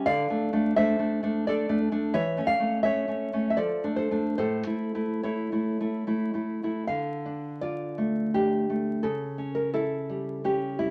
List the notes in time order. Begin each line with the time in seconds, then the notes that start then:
0.06 D3 D5 F5
0.30 A3 D4
0.53 A3 D4
0.76 A3 D4 C5 E5
0.99 A3 D4
1.23 A3 D4
1.47 A3 D4 A4 D5
1.69 A3 D4
1.92 A3 D4
2.14 E3 C#5 E5
2.37 A3 C#4
2.47 D5 F5
2.60 A3 C#4
2.83 A3 C#4 C#5 E5
3.08 A3 C#4
3.33 A3 C#4
3.50 E5
3.57 F3 A4 D5
3.84 A3 D4
3.96 A4 C5
4.11 A3 D4
4.38 A2 A4 C5
4.67 A3 E4
4.95 A3 E4
5.23 A3 E4 A4 C#5
5.52 A3 E4
5.80 A3 E4
6.07 A3 E4
6.34 A3 E4
6.63 A3 E4
6.87 D3 F5
7.26 D4
7.61 F4 D5
7.98 A3
8.34 D4 G4
8.70 A3
9.03 C#3 A4
9.38 C#4
9.55 A#4
9.74 E4 A4
10.10 G3
10.44 C#4 G4
10.79 G3 E4